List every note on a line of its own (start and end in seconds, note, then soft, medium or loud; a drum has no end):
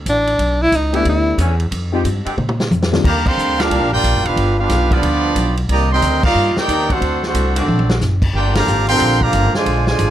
0.06 0.38 A1 medium
0.06 0.64 D4 medium
0.06 kick soft
0.06 hi-hat pedal medium
0.06 ride medium
0.27 ride medium
0.39 0.71 B1 medium
0.39 kick soft
0.39 ride medium
0.62 0.77 E4 loud
0.72 1.04 C#2 loud
0.72 0.97 D#4 medium
0.72 kick soft
0.72 hi-hat pedal medium
0.72 ride medium
0.92 1.01 E3 loud
0.92 1.01 A3 medium
0.92 1.36 A3 medium
0.92 1.01 B3 medium
0.92 1.36 B3 medium
0.92 1.36 D4 medium
0.92 1.36 E4 medium
0.92 1.06 E4 medium
0.92 1.01 G4 loud
0.92 1.36 G4 medium
0.92 ride medium
1.05 1.37 D2 loud
1.05 kick soft
1.05 ride medium
1.09 1.38 E4 medium
1.38 1.70 E2 loud
1.38 1.53 E3 loud
1.38 1.53 A3 medium
1.38 1.53 B3 medium
1.38 1.53 C#4 loud
1.38 kick soft
1.38 hi-hat pedal medium
1.38 ride medium
1.60 ride medium
1.71 2.04 F2 loud
1.71 kick soft
1.71 ride medium
1.92 2.01 F3 loud
1.92 2.03 G#3 medium
1.92 2.01 G#3 medium
1.92 2.03 C4 medium
1.92 2.03 D#4 medium
1.92 2.01 D#4 medium
1.92 2.03 F4 medium
1.92 2.03 G4 medium
1.92 2.01 G4 loud
2.04 2.24 G2 loud
2.04 kick soft
2.04 hi-hat pedal medium
2.04 ride medium
2.25 2.33 D3 loud
2.25 2.34 G#3 medium
2.25 2.33 C4 medium
2.25 2.34 G4 loud
2.25 muted upright bass stroke soft
2.25 ride medium
2.37 2.70 A#2 medium
2.37 mid tom medium
2.49 mid tom medium
2.60 snare medium
2.71 3.03 F2 loud
2.71 hi-hat pedal medium
2.71 high tom medium
2.83 snare medium
2.91 3.02 D#3 medium
2.91 3.03 A#3 medium
2.91 3.02 C4 medium
2.91 3.03 D4 medium
2.91 3.03 F4 medium
2.91 3.03 G4 medium
2.91 snare loud
3.03 3.36 D#2 medium
3.03 3.24 D3 medium
3.03 3.24 G3 medium
3.03 3.24 A#3 medium
3.03 3.25 G4 loud
3.03 3.25 D5 medium
3.03 3.25 F5 loud
3.03 3.25 A#5 loud
3.03 kick medium
3.03 crash loud
3.26 3.59 D3 loud
3.26 3.59 G3 loud
3.26 3.59 C4 loud
3.26 3.59 A#4 medium
3.26 3.59 F5 loud
3.26 3.60 G5 loud
3.26 3.60 C6 loud
3.26 kick loud
3.26 crash medium
3.38 3.69 D2 loud
3.38 hi-hat pedal medium
3.58 3.67 D3 loud
3.58 3.66 G3 medium
3.58 3.90 A#3 loud
3.58 3.66 C4 medium
3.58 3.90 D4 loud
3.58 3.93 D4 loud
3.58 3.67 F4 loud
3.58 3.92 F4 loud
3.58 3.93 G4 loud
3.58 3.92 A#4 loud
3.58 3.93 F5 loud
3.58 snare medium
3.58 ride medium
3.71 3.81 C2 loud
3.71 kick soft
3.71 ride medium
3.81 3.91 A#1 medium
3.91 4.02 G1 medium
3.91 4.22 A#3 medium
3.91 4.22 D4 medium
3.91 4.23 F4 loud
3.91 4.22 G4 medium
3.91 4.23 A#4 loud
3.91 4.23 D5 medium
3.91 4.23 G5 loud
4.04 4.14 A#1 medium
4.04 kick soft
4.04 hi-hat pedal medium
4.04 ride medium
4.14 4.24 G1 medium
4.24 4.35 D#1 medium
4.24 4.56 B3 medium
4.24 4.56 D4 medium
4.24 4.59 D4 medium
4.24 4.57 F4 loud
4.24 4.58 G4 medium
4.24 4.59 B4 medium
4.24 4.59 F5 loud
4.24 ride medium
4.36 4.68 G1 medium
4.36 kick soft
4.36 ride medium
4.58 4.88 B3 medium
4.58 4.88 D4 medium
4.58 4.90 D4 medium
4.58 4.89 F4 medium
4.58 4.90 G4 medium
4.58 4.90 B4 medium
4.58 4.90 F5 loud
4.69 5.02 B1 loud
4.69 kick soft
4.69 snare soft
4.69 hi-hat pedal medium
4.69 ride medium
4.91 5.34 D3 loud
4.91 5.57 F3 loud
4.91 5.34 G3 medium
4.91 5.57 B3 loud
4.91 5.34 B3 loud
4.91 5.58 B3 medium
4.91 5.57 D4 loud
4.91 5.34 F4 loud
4.91 5.58 F4 loud
4.91 5.58 G4 loud
4.91 5.58 D5 loud
4.91 kick medium
4.91 ride medium
5.03 5.35 D2 medium
5.03 kick soft
5.03 ride medium
5.35 5.68 B1 loud
5.35 kick soft
5.35 hi-hat pedal medium
5.35 ride medium
5.57 ride medium
5.69 6.01 C2 loud
5.69 5.90 D#3 medium
5.69 5.90 G3 medium
5.69 5.90 A#3 medium
5.69 5.90 G4 medium
5.69 5.90 D5 medium
5.69 5.90 D#5 loud
5.69 5.90 A#5 loud
5.69 kick soft
5.69 ride medium
5.92 6.22 D#3 medium
5.92 6.22 G3 medium
5.92 6.22 C4 medium
5.92 6.22 A#4 medium
5.92 6.22 D#5 medium
5.92 6.22 G5 medium
5.92 6.22 C6 loud
6.02 6.34 D2 loud
6.02 kick soft
6.02 hi-hat pedal medium
6.02 ride medium
6.23 6.55 G3 loud
6.23 6.55 A#3 loud
6.23 6.55 D#4 medium
6.23 6.55 F4 loud
6.23 6.55 A#4 loud
6.23 6.55 D5 loud
6.23 6.55 F5 loud
6.23 kick loud
6.23 crash medium
6.35 6.55 G2 medium
6.57 6.91 A#3 medium
6.57 6.90 D#4 medium
6.57 6.91 D#4 loud
6.57 6.90 G4 medium
6.57 6.91 A#4 loud
6.57 6.91 D5 loud
6.57 6.91 G5 loud
6.57 muted upright bass stroke soft
6.57 snare medium
6.67 7.00 D#2 loud
6.67 7.01 A#3 medium
6.67 7.01 C4 medium
6.67 7.01 D4 loud
6.67 7.01 D#4 loud
6.67 kick soft
6.67 hi-hat pedal medium
6.67 ride medium
6.90 7.23 A3 medium
6.90 7.23 C4 medium
6.90 7.24 D4 medium
6.90 7.23 F#4 medium
6.90 7.24 A4 medium
6.90 7.24 C5 medium
6.90 7.24 F#5 loud
6.90 kick medium
6.90 ride medium
7.01 7.33 D2 medium
7.01 kick soft
7.01 ride medium
7.23 7.54 A3 medium
7.23 7.54 C4 medium
7.23 7.55 D4 medium
7.23 7.54 F#4 medium
7.23 7.56 A4 medium
7.23 7.56 C5 medium
7.23 7.56 F#5 medium
7.23 snare soft
7.34 7.66 C2 loud
7.34 kick soft
7.34 hi-hat pedal medium
7.34 ride medium
7.55 7.63 D3 loud
7.55 7.92 F#3 medium
7.55 7.92 A3 medium
7.55 7.64 A#3 medium
7.55 7.63 C4 medium
7.55 7.92 D4 medium
7.55 7.64 F#4 loud
7.55 ride medium
7.59 7.92 C4 medium
7.59 7.92 F#4 medium
7.59 7.93 A4 medium
7.59 7.92 D5 medium
7.66 7.99 A#1 medium
7.66 high tom medium
7.79 high tom medium
7.89 7.97 D3 medium
7.89 7.97 A#3 medium
7.89 7.97 C4 medium
7.89 7.97 F#4 medium
7.89 snare medium
8.00 8.32 F#1 medium
8.00 snare medium
8.00 hi-hat pedal medium
8.22 kick medium
8.22 crash medium
8.33 8.66 G1 medium
8.33 8.54 A#3 medium
8.33 8.54 D4 medium
8.33 8.55 F4 medium
8.33 8.54 G4 medium
8.33 8.55 A#4 medium
8.33 8.55 D5 medium
8.33 8.55 G5 loud
8.33 kick soft
8.54 8.86 D3 loud
8.54 8.86 F3 medium
8.54 8.86 A#3 loud
8.54 8.87 G4 loud
8.54 8.87 D5 medium
8.54 8.87 F5 medium
8.54 8.87 A#5 loud
8.54 snare medium
8.54 ride medium
8.66 8.99 G#1 loud
8.66 9.17 F3 loud
8.66 9.17 A#3 medium
8.66 9.17 D4 medium
8.66 9.17 G4 loud
8.66 hi-hat pedal medium
8.88 9.20 D3 loud
8.88 9.20 F3 loud
8.88 9.19 C4 loud
8.88 9.19 A#4 loud
8.88 9.19 F5 loud
8.88 9.19 G5 loud
8.88 9.19 C6 loud
8.88 ride medium
8.99 9.32 A#1 medium
8.99 kick soft
8.99 ride medium
9.21 9.54 D3 loud
9.21 9.54 F3 loud
9.21 9.55 A#3 loud
9.21 9.55 G4 loud
9.21 9.55 D5 loud
9.21 9.55 F5 loud
9.21 9.55 A#5 loud
9.21 kick medium
9.32 9.53 G1 loud
9.32 kick soft
9.32 hi-hat pedal medium
9.32 ride medium
9.54 9.85 D3 loud
9.54 9.86 F3 medium
9.54 9.86 G#3 loud
9.54 9.86 F4 medium
9.54 9.86 C5 medium
9.54 9.86 D5 medium
9.54 9.86 G#5 loud
9.54 muted upright bass stroke soft
9.54 snare medium
9.66 9.98 A#1 medium
9.66 kick soft
9.66 ride medium
9.87 10.10 D3 medium
9.87 10.10 F3 loud
9.87 10.10 G#3 loud
9.87 10.10 F4 medium
9.87 10.10 C5 medium
9.87 10.10 D5 medium
9.87 10.10 G#5 loud
9.87 snare medium
9.99 10.10 G#1 loud
9.99 kick soft
9.99 hi-hat pedal medium
9.99 ride medium